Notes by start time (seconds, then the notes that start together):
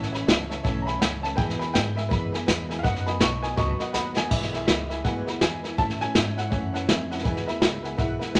Already playing: A1 A2 E3 A3 C#4 A4 F#5
0.03 snare
0.12 A3 C#4 A4 C#5 E5 B5, snare
0.26 C#2 E3 A3 C#4 A4 C#5 E5 A5, snare, hi-hat pedal
0.49 A3 C#4 A4 C#5 E5 A5, snare
0.63 B1 A2 E3 A3 C#4 A4 C#5 E5 A5, kick, snare
0.82 C#5 E5 A#5
0.87 A3 C#4 A4 G#5 B5, snare
0.99 C#2 E3 A3 C#5 E5 G#5, snare, hi-hat pedal
1.03 C#4 A4
1.21 A3 C#4 A4 C#5 E5 A5, snare
1.36 E2 B2 E3 G#3 B3 G#4 B4 E5 G5 G#5, kick, snare
1.50 snare
1.58 E3 G#3 B3 G#4 B4 E5 G#5 B5, snare
1.73 G#2 E3 G#3 B3 G#4 B4 E5 G5 G#5, snare, hi-hat pedal
1.95 E3 G#3 B3 G#4 B4 E5 G#5, snare
2.09 E2 F#2 B2 E3 G#3 B3 G#4 B4 E5 B5, kick, snare
2.32 E3 G#3 B3 G#4 B4 E5 G#5, snare
2.46 E2 E3 G#3 B3 G#4 B4 E5 B5, snare, hi-hat pedal
2.69 E3 G#3 B3 G#4 B4 E5 G#5, snare
2.79 F5
2.83 F#2 B2 F#3 B3 D#4 F#4 B4 D#5 F#5, kick, snare
2.96 snare
3.05 B3 D#4 F#4 B4 D#5 G#5 B5, snare
3.19 B1 F#3 B3 D#4 F#4 B4 D#5 A5 C#6, snare, hi-hat pedal
3.42 B3 D#4 F#4 B4 D#5 G#5, snare
3.56 C#2 B2 F#3 B3 D#4 F#4 B4 D#5 A5 C#6, kick, snare
3.79 B3 D#4 F#4 B4 D#5 F#5, snare
3.93 D#2 F#3 B3 D#4 F#4 B4 D#5 F#5 B5, snare, hi-hat pedal
4.15 B3 D#4 F#4 B4 D#5 G#5, snare
4.30 B1 E2 B2 E3 G#3 B3 E4 B4 E5 G#5, kick, snare, crash
4.42 snare
4.53 E3 G#3 B3 E4 B4 E5 G#5, snare
4.67 C#2 E3 G#3 B3 E4 B4 E5 B5, snare, hi-hat pedal
4.89 E3 G#3 B3 E4 B4 E5 G#5, snare
5.04 D2 E2 B2 E3 G#3 B3 E4 B4 E5 F#5 G#5, kick, snare
5.26 G#3 B3 E4 B4 E5 B5, snare
5.31 E3
5.41 E2 E3 G#3 B3 E4 B4 E5 G#5, snare, hi-hat pedal
5.63 G#3 B3 E4 B4 E5 G#5, snare
5.67 E3
5.77 A2 E3 A3 C#4 E4 C#5 E5 A5, kick, snare
5.90 snare
6.00 A3 C#4 E4 C#5 E5 G#5 A5, snare
6.15 G#2 E4 C#5 E5 A5, snare, hi-hat pedal
6.36 A3 C#4 E4 C#5 E5 F#5, snare
6.50 F#2 A2 E3 A3 C#4 E4 C#5 E5 G#5, kick, snare
6.73 A3 C#4 E4 C#5 E5 F#5 A5, snare
6.87 F2 E3 E4 C#5 E5 G#5, snare, hi-hat pedal
7.10 A3 C#4 E4 C#5 E5 F#5 A5, snare
7.18 snare
7.23 E2 B2 E3 G#3 B3 E4 B4 E5 G#5, kick, snare
7.37 snare
7.46 E3 G#3 B3 E4 B4 E5 B5, snare
7.60 C#2 E3 G#3 B3 E4 B4 E5 B5, snare, hi-hat pedal
7.82 E3 G#3 B3 E4 B4 E5 F#5 G#5, snare
7.97 B1 E2 B2 E3 G#3 B3 E4 B4 E5 F#5, kick, snare
8.19 E3 G#3 B3 E4 B4 E5 F#5, muted upright bass stroke, snare
8.33 D2 E3 G#3 B4 E5 G#5, snare, hi-hat pedal